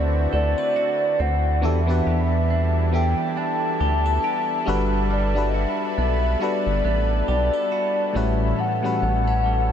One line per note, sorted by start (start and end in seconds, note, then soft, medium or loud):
0.00 0.28 D2 loud
0.00 1.59 D3 medium
0.00 1.63 D3 medium
0.00 1.64 D3 medium
0.00 1.59 A3 medium
0.00 1.19 C4 medium
0.00 1.59 C4 medium
0.00 1.65 C4 medium
0.00 1.59 D4 medium
0.00 1.59 E4 medium
0.00 1.64 E4 medium
0.00 0.76 F#4 medium
0.00 1.59 F#4 medium
0.00 1.63 F#4 medium
0.00 0.69 B4 medium
0.00 1.65 C5 medium
0.00 0.29 D5 loud
0.33 0.55 D2 medium
0.33 0.58 A4 medium
0.33 1.23 D5 loud
0.58 1.73 B4 medium
0.76 2.06 F#4 medium
1.20 1.65 D2 loud
1.20 1.73 C4 medium
1.20 1.66 F#5 loud
1.61 2.02 E2 loud
1.61 1.80 E3 medium
1.61 4.64 E3 medium
1.61 4.77 E3 medium
1.61 4.64 G3 medium
1.61 1.80 B3 medium
1.61 8.11 D4 medium
1.61 1.80 D4 medium
1.61 8.11 E4 medium
1.61 1.81 F#4 medium
1.61 1.81 G4 medium
1.61 8.11 A4 medium
1.61 1.81 A4 medium
1.61 2.94 E5 loud
1.87 2.61 E3 medium
1.87 2.61 B3 medium
1.87 2.62 D4 medium
1.87 2.62 F#4 medium
1.87 2.62 G4 medium
1.87 2.63 B4 medium
2.07 3.15 E2 loud
2.07 2.93 G4 medium
2.50 3.37 D4 medium
2.92 4.15 E3 medium
2.92 4.15 B3 medium
2.92 4.16 D4 medium
2.92 4.16 E4 medium
2.92 3.81 G4 medium
2.92 4.16 G4 medium
2.92 4.17 A4 medium
2.92 3.40 G5 loud
3.37 5.98 D4 medium
3.37 4.68 A5 loud
3.81 4.19 D2 loud
3.81 4.06 G4 medium
4.06 4.78 A4 medium
4.24 5.54 G4 medium
4.66 5.66 G1 loud
4.66 5.20 G3 loud
4.66 8.12 G3 medium
4.66 5.10 G3 medium
4.66 5.21 D4 medium
4.66 5.21 F#4 medium
4.66 5.21 A4 medium
4.66 8.12 B4 medium
4.66 5.22 B4 loud
5.11 8.62 G3 medium
5.11 5.51 D5 medium
5.34 6.09 G3 medium
5.34 6.09 D4 medium
5.34 6.10 F#4 medium
5.34 6.10 A4 medium
5.34 6.11 B4 medium
5.49 5.57 D#5 medium
5.54 6.41 F#4 medium
5.54 5.98 E5 medium
5.98 6.36 B1 medium
5.98 6.84 B3 medium
5.98 6.44 E5 medium
6.40 7.63 G3 medium
6.40 7.63 D4 medium
6.40 7.71 F#4 medium
6.40 7.64 F#4 medium
6.40 7.64 A4 medium
6.40 7.65 B4 medium
6.40 7.29 D5 loud
6.67 6.83 G1 medium
6.85 7.23 A1 loud
6.85 8.62 B3 medium
7.28 7.51 B1 loud
7.28 7.53 G4 medium
7.28 8.18 D5 loud
7.53 8.25 A4 medium
7.72 9.49 F#4 medium
8.13 8.54 A1 loud
8.13 8.68 A2 medium
8.13 8.57 A2 medium
8.13 8.68 E3 medium
8.13 8.69 G3 medium
8.13 9.72 A3 medium
8.13 9.72 C#4 medium
8.13 8.69 C#4 medium
8.13 8.69 F#4 medium
8.13 9.72 A4 loud
8.13 8.70 B4 medium
8.13 8.62 E5 loud
8.59 9.72 A2 medium
8.59 9.72 F#5 loud
8.82 9.56 A2 medium
8.82 9.57 E3 medium
8.82 9.57 G3 medium
8.82 9.58 C#4 medium
8.82 9.58 F#4 medium
8.82 9.58 B4 medium
9.02 9.72 A1 loud
9.02 9.27 B3 medium
9.27 9.72 C#4 medium
9.46 9.72 G3 medium